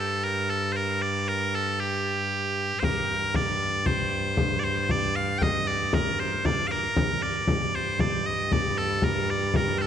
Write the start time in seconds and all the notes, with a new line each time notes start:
Already playing: G2
0.00 A4
0.24 A#4
0.50 A4
0.72 A#4 C5
1.02 D5
1.28 A#4
1.55 A4
1.80 G4
2.80 G2 C5, frame drum
2.84 A#4
3.34 D5, frame drum
3.60 frame drum
3.86 C5, frame drum
4.37 frame drum
4.59 D5
4.63 C5, frame drum
4.89 D5, frame drum
5.16 F5
5.38 G5, frame drum
5.43 D#5
5.67 D5, frame drum
5.93 A#4, frame drum
6.19 C5
6.45 D5, frame drum
6.67 A#4 F5
6.96 G2, frame drum
7.22 D5
7.48 frame drum
7.74 C5, frame drum
7.99 D5, frame drum
8.26 D#5
8.52 D5, frame drum
8.77 A4, frame drum
9.02 A#4, frame drum
9.30 D5
9.54 A#4, frame drum
9.78 A4 C5, frame drum